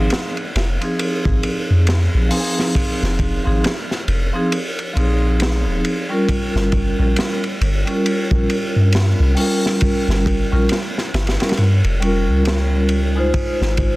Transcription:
0.00 0.32 F3 medium
0.00 0.33 C4 medium
0.00 0.33 D#4 medium
0.00 0.34 G#4 medium
0.10 snare loud
0.10 ride medium
0.37 ride soft
0.55 0.78 F1 loud
0.55 snare soft
0.55 ride medium
0.79 2.26 F3 medium
0.79 2.27 C4 medium
0.79 2.28 D#4 medium
0.79 ride soft
0.84 2.29 G#4 medium
0.99 ride medium
1.25 1.41 G#1 medium
1.25 kick medium
1.43 ride medium
1.70 2.08 F2 medium
1.87 snare loud
1.87 ride medium
2.14 2.30 A#1 medium
2.29 3.39 F3 medium
2.29 3.40 C4 medium
2.29 3.40 D#4 medium
2.29 open hi-hat medium
2.34 3.41 G#4 medium
2.59 snare soft
2.75 kick loud
2.75 ride medium
3.02 3.40 F1 medium
3.02 snare soft
3.19 kick medium
3.19 ride medium
3.44 3.62 G#1 medium
3.44 3.67 F3 medium
3.44 3.68 C4 medium
3.44 3.68 D#4 medium
3.44 3.68 G#4 medium
3.64 snare loud
3.64 ride medium
3.91 snare soft
4.08 4.31 F1 loud
4.08 ride medium
4.33 4.56 F3 medium
4.33 4.56 C4 medium
4.33 4.56 D#4 medium
4.33 4.57 G#4 medium
4.52 ride medium
4.79 ride soft
4.93 5.68 A#1 medium
4.93 6.03 F3 medium
4.93 6.04 C4 medium
4.93 6.05 D#4 medium
4.93 ride medium
4.99 6.06 G#4 medium
5.40 snare loud
5.40 ride medium
5.66 5.82 D#1 medium
5.85 ride medium
6.09 6.92 G3 medium
6.09 6.93 C#4 medium
6.09 6.93 F4 medium
6.09 6.93 A#4 medium
6.29 kick medium
6.29 ride medium
6.55 6.93 G1 medium
6.55 snare soft
6.72 kick medium
6.72 ride medium
6.99 7.15 A#1 loud
6.99 7.39 G3 medium
6.99 7.39 C#4 medium
6.99 7.39 F4 medium
6.99 7.40 A#4 medium
7.16 snare loud
7.16 ride medium
7.44 ride soft
7.61 7.84 G1 loud
7.61 ride medium
7.85 9.32 G3 medium
7.85 9.33 C#4 medium
7.85 9.34 F4 medium
7.85 ride soft
7.90 9.35 A#4 medium
8.06 ride medium
8.31 8.47 A#1 medium
8.31 kick medium
8.50 ride medium
8.76 9.14 G2 medium
8.92 snare loud
8.92 ride medium
9.20 9.35 C2 medium
9.35 10.45 G3 medium
9.35 10.45 C#4 medium
9.35 10.46 F4 medium
9.35 open hi-hat medium
9.40 10.47 A#4 medium
9.66 snare soft
9.81 kick medium
9.81 ride medium
10.08 10.46 G1 medium
10.08 snare soft
10.26 kick medium
10.26 ride medium
10.51 10.68 A#1 loud
10.51 10.73 G3 medium
10.51 10.74 C#4 medium
10.51 10.74 F4 medium
10.51 10.75 A#4 loud
10.69 snare loud
10.69 ride medium
10.98 snare soft
11.14 11.37 G1 loud
11.14 snare medium
11.14 ride medium
11.27 snare medium
11.27 ride medium
11.40 11.62 G3 medium
11.40 11.62 C#4 medium
11.40 11.63 F4 medium
11.40 11.63 A#4 medium
11.40 snare medium
11.40 ride medium
11.49 snare medium
11.49 ride medium
11.57 11.81 G2 loud
11.57 ride medium
11.84 12.29 F1 medium
11.84 ride soft
12.00 13.09 G3 medium
12.00 13.10 C#4 medium
12.00 13.11 F4 medium
12.00 ride medium
12.05 13.12 A#4 medium
12.28 13.31 C#2 medium
12.45 snare loud
12.45 ride medium
12.89 ride medium
13.15 13.96 G#3 medium
13.15 13.96 D#4 medium
13.15 13.96 F4 medium
13.15 13.96 C5 medium
13.34 kick medium
13.34 ride medium
13.61 13.96 G#1 medium
13.61 snare soft
13.77 kick loud
13.77 ride medium

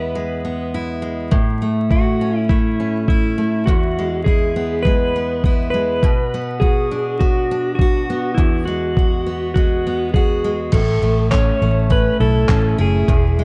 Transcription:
0.00 1.32 E2 medium
0.00 0.14 G#3 medium
0.00 0.43 B3 soft
0.00 0.74 E4 medium
0.00 0.69 B4 medium
0.15 1.01 G#3 medium
0.45 1.38 B3 soft
0.74 1.91 E4 medium
1.02 1.38 G#3 soft
1.31 3.67 A2 medium
1.31 kick medium
1.62 2.49 A3 medium
1.91 3.10 E4 soft
1.91 2.38 F#4 medium
1.91 kick loud
2.21 2.79 C#4 soft
2.38 2.49 E4 medium
2.49 3.37 A3 medium
2.49 3.07 E4 medium
2.49 kick medium
2.80 3.74 C#4 soft
3.08 3.69 E4 medium
3.08 4.27 E4 medium
3.08 kick loud
3.38 3.73 A3 medium
3.66 6.03 E2 medium
3.66 4.24 F#4 medium
3.66 kick loud
3.98 4.85 G#3 medium
4.24 5.44 E4 medium
4.24 4.86 G#4 medium
4.24 kick loud
4.56 5.15 B3 medium
4.83 5.73 G#3 medium
4.83 5.69 B4 medium
4.83 kick medium
5.16 6.34 B3 medium
5.44 6.09 E4 medium
5.44 kick loud
5.70 6.09 G#3 medium
5.70 6.63 B4 medium
6.03 8.39 B2 medium
6.03 kick medium
6.34 7.20 B3 medium
6.60 7.81 F#4 medium
6.60 7.21 G#4 medium
6.60 kick loud
6.91 7.50 D4 medium
7.19 8.09 B3 medium
7.19 7.74 F#4 medium
7.19 kick medium
7.51 8.45 D4 medium
7.75 8.32 F#4 medium
7.75 kick loud
7.81 8.70 F#4 medium
8.10 8.67 B3 soft
8.35 10.73 E2 medium
8.35 8.67 E4 medium
8.35 kick loud
8.65 9.56 G#3 medium
8.65 9.53 F#4 medium
8.97 10.15 F#4 soft
8.97 kick loud
9.26 9.85 B3 soft
9.54 10.43 G#3 medium
9.54 10.13 F#4 medium
9.54 kick medium
9.87 10.80 B3 medium
10.14 10.80 F#4 medium
10.14 10.55 G#4 medium
10.14 kick loud
10.44 10.79 G#3 medium
10.72 10.97 A1 medium
10.72 13.09 A2 medium
10.72 11.28 A4 medium
10.72 kick loud
10.72 crash medium
11.02 11.50 A1 medium
11.02 11.61 A3 medium
11.31 11.89 C#4 medium
11.31 11.86 C#5 medium
11.31 kick loud
11.31 clap loud
11.62 12.10 A1 medium
11.62 13.14 A3 soft
11.90 12.49 C#4 medium
11.90 12.20 B4 medium
11.90 kick medium
12.20 12.44 B1 medium
12.20 12.78 E4 medium
12.20 12.81 A4 medium
12.49 12.73 A1 medium
12.49 13.14 C#4 medium
12.49 kick loud
12.49 clap medium
12.78 13.03 F#1 medium
12.78 13.44 E4 medium
12.78 13.44 G#4 medium
13.08 13.44 E1 medium
13.08 13.44 E2 medium
13.08 kick loud
13.39 13.44 G#3 medium

